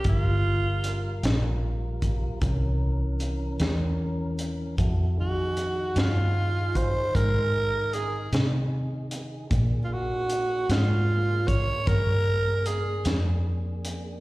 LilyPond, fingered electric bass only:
\new Staff \with { instrumentName = "Fingered electric bass" } { \clef bass \time 12/8 \key f \minor \tempo 4. = 51 g,,4. bes,,4. c,4. e,4. | f,4. g,4. aes,4. c4. | bes,4. aes,4. g,4. f,4. | }